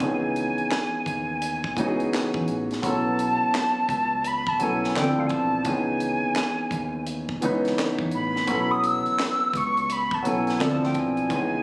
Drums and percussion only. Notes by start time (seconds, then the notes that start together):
0.00 kick, closed hi-hat
0.36 closed hi-hat
0.58 closed hi-hat
0.71 snare, clap, closed hi-hat
1.06 kick, closed hi-hat
1.42 closed hi-hat
1.64 kick
1.77 kick, closed hi-hat
2.00 closed hi-hat
2.14 snare, clap, closed hi-hat
2.34 kick
2.48 closed hi-hat
2.71 snare, closed hi-hat
2.83 kick, closed hi-hat
3.19 closed hi-hat
3.54 snare, clap, closed hi-hat
3.89 kick, closed hi-hat
4.24 closed hi-hat
4.47 kick
4.60 closed hi-hat
4.84 snare
4.96 snare, clap, closed hi-hat
5.29 kick, closed hi-hat
5.65 kick, closed hi-hat
6.00 closed hi-hat
6.36 snare, clap, closed hi-hat
6.71 kick, closed hi-hat
7.07 closed hi-hat
7.29 kick
7.42 closed hi-hat
7.65 snare, closed hi-hat
7.78 snare, clap, closed hi-hat
7.99 kick
8.11 closed hi-hat
8.36 snare
8.48 kick, closed hi-hat
8.84 closed hi-hat
9.06 closed hi-hat
9.19 snare, clap, closed hi-hat
9.53 kick, closed hi-hat
9.77 closed hi-hat
9.90 closed hi-hat
10.11 kick
10.25 closed hi-hat
10.47 snare, closed hi-hat
10.60 snare, clap, closed hi-hat
10.84 snare
10.94 kick, closed hi-hat
11.17 closed hi-hat
11.30 kick, closed hi-hat